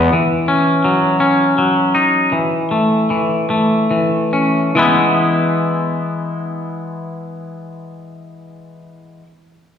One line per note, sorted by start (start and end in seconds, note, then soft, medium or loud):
0.00 0.12 E3 soft
0.00 0.13 G#3 soft
0.00 0.13 B3 soft
0.00 0.13 B4 medium
0.13 1.94 E3 soft
0.48 1.19 C#4 soft
0.84 1.57 F#3 soft
1.20 2.32 C#4 soft
1.58 2.32 F#3 soft
1.95 2.32 D#4 soft
2.32 3.09 E3 soft
2.71 3.49 A3 soft
3.10 3.89 E3 soft
3.50 4.76 A3 soft
3.91 4.74 E3 soft
4.33 4.77 C#4 soft
4.75 9.22 E3 medium
4.75 9.24 G#3 medium
4.75 9.25 B3 medium
4.75 9.26 E4 medium